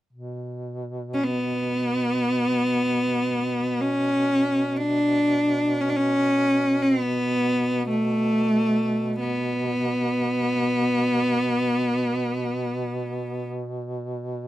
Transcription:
0.13 14.47 B2 soft
1.14 1.25 C#4 medium
1.24 3.83 B3 medium
3.81 4.78 C#4 medium
4.77 5.82 D4 medium
5.81 5.91 C#4 medium
5.90 5.98 D4 medium
5.96 6.83 C#4 medium
6.82 7.01 C4 medium
7.01 7.89 B3 medium
7.89 9.18 A3 medium
9.20 13.48 B3 medium

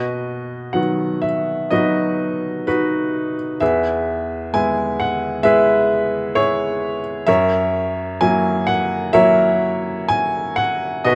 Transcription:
0.00 3.57 B2 soft
0.00 1.67 F#4 soft
0.00 1.67 B4 soft
0.00 0.77 D#5 soft
0.73 1.68 D#3 soft
0.73 1.68 F#3 soft
0.73 1.68 B3 soft
0.73 1.24 F#5 medium
1.22 1.72 E5 medium
1.71 2.64 F#3 soft
1.71 2.64 B3 soft
1.71 2.64 D#4 soft
1.71 2.66 F#4 soft
1.71 2.66 B4 soft
1.71 2.69 D#5 medium
2.67 3.58 D#4 soft
2.67 3.57 F#4 soft
2.67 3.34 B4 medium
3.60 7.24 E2 soft
3.60 5.41 G#4 soft
3.60 5.41 B4 soft
3.60 4.56 E5 medium
4.54 5.42 G#3 soft
4.54 5.42 B3 soft
4.54 5.42 E4 soft
4.54 5.01 G#5 medium
5.00 5.46 F#5 medium
5.43 6.32 G#3 soft
5.43 6.32 B3 soft
5.43 6.33 E4 soft
5.43 6.34 G#4 medium
5.43 7.24 B4 medium
5.43 6.38 E5 medium
6.35 7.23 E4 soft
6.35 7.24 G#4 medium
6.35 7.00 C#5 medium
7.27 11.01 F#2 medium
7.27 9.10 A#4 medium
7.27 9.10 C#5 medium
7.27 8.23 E5 medium
8.21 9.12 F#3 soft
8.21 9.12 A#3 soft
8.21 9.12 E4 soft
8.21 8.69 G#5 medium
8.67 9.15 F#5 medium
9.13 10.06 F#3 soft
9.13 10.06 A#3 soft
9.13 10.06 E4 soft
9.13 11.01 A#4 medium
9.13 11.01 C#5 medium
9.13 10.11 E5 medium
10.09 10.58 G#5 medium
10.56 11.06 F#5 medium
11.04 11.15 B2 medium
11.04 11.15 F#4 medium
11.04 11.15 B4 medium
11.04 11.15 D#5 medium

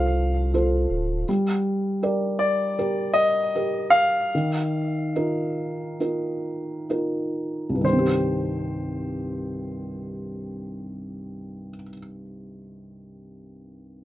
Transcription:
0.00 0.87 C2 medium
0.00 1.24 F3 medium
0.00 0.54 F4 soft
0.00 0.55 A4 soft
0.00 0.55 C5 soft
0.00 0.49 F5 medium
0.00 downlifter medium
0.54 1.26 F4 soft
0.54 1.26 A4 soft
0.54 1.26 C5 soft
0.90 1.25 D1 medium
1.29 4.29 G3 medium
2.03 2.75 G4 soft
2.03 2.76 A#4 soft
2.03 2.76 D5 soft
2.39 3.11 D5 medium
2.79 3.52 G4 soft
2.79 3.52 A#4 soft
3.14 3.95 D#5 medium
3.55 4.31 G4 soft
3.55 4.32 A#4 soft
3.90 6.84 F5 medium
4.35 7.80 D#3 soft
5.16 5.98 D#4 soft
5.16 5.98 F4 soft
5.16 5.98 A#4 soft
6.00 6.87 D#4 soft
6.00 6.87 F4 soft
6.00 6.88 A#4 soft
6.90 7.81 D#4 soft
6.90 7.82 F4 soft
6.90 7.82 A#4 soft
7.69 11.69 C2 soft
7.75 11.75 G2 soft
7.81 11.81 D#3 soft
7.81 11.84 C5 medium
7.87 11.87 G3 soft
7.93 11.92 C4 soft
7.99 11.98 G4 soft

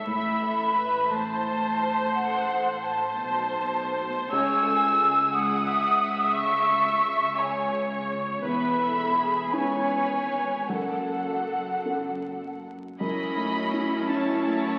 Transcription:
0.06 3.17 A1 soft
0.06 2.11 A2 soft
0.06 3.16 A2 medium
0.06 0.42 E5 medium
0.06 1.11 E5 medium
0.06 1.09 B5 medium
0.06 1.13 B5 medium
0.42 0.76 A4 soft
0.76 1.10 B4 medium
1.11 4.31 A3 soft
1.11 3.18 C5 medium
1.11 2.15 C5 medium
1.11 2.15 A5 medium
1.11 2.13 A5 medium
2.13 2.83 A4 medium
2.13 2.83 F#5 medium
2.13 2.85 F#5 medium
2.83 4.28 C5 medium
2.83 4.02 A5 medium
2.83 4.31 A5 medium
3.19 4.29 B1 medium
3.19 4.29 B2 medium
3.19 4.29 C5 medium
4.30 8.41 C#2 medium
4.30 6.33 C#2 medium
4.30 8.41 C#3 medium
4.30 4.66 C#5 medium
4.30 5.33 G#5 medium
4.30 5.36 E6 loud
4.30 5.35 E6 medium
4.65 5.00 A4 medium
5.00 5.32 G#4 soft
5.33 8.45 G#3 soft
5.33 5.67 G#4 medium
5.33 6.36 F#5 medium
5.33 6.34 D#6 medium
5.33 6.37 D#6 medium
5.68 6.00 E5 medium
6.01 7.40 E5 medium
6.35 7.37 E5 medium
6.35 7.41 C#6 medium
6.35 7.38 C#6 medium
7.38 7.74 C#5 medium
7.38 8.44 C#5 medium
7.38 7.74 G#5 medium
8.43 9.51 E1 medium
8.43 10.64 E2 soft
8.43 9.51 E2 medium
8.43 8.80 B4 medium
8.43 9.49 E5 medium
8.43 9.55 B5 medium
8.43 9.49 B5 medium
8.80 9.16 A4 medium
9.16 9.52 G#4 soft
9.53 10.66 G#1 soft
9.53 10.66 G#2 soft
9.53 10.64 C#4 soft
9.53 10.64 E4 soft
9.53 10.68 B4 medium
9.53 10.68 C#5 medium
9.53 10.70 G#5 medium
9.53 10.69 G#5 medium
10.68 12.79 F#1 soft
10.68 12.96 F#2 soft
10.68 12.79 F#2 soft
10.68 12.43 A4 soft
10.68 12.59 A4 medium
10.68 12.62 F#5 medium
11.85 12.96 C#4 soft
11.85 12.96 A4 soft
13.00 14.79 F#2 medium
13.00 14.79 C#4 medium
13.00 14.79 E4 medium
13.00 14.05 D#5 medium
13.00 14.11 B5 medium
13.00 14.05 B5 medium
13.36 13.69 A3 soft
13.36 13.69 E4 soft
13.73 14.05 C#4 soft
13.73 14.05 E4 soft
14.08 14.41 C#4 soft
14.08 14.41 E4 soft
14.08 14.79 C#5 medium
14.08 14.79 A5 medium
14.46 14.77 A3 soft
14.46 14.77 E4 soft

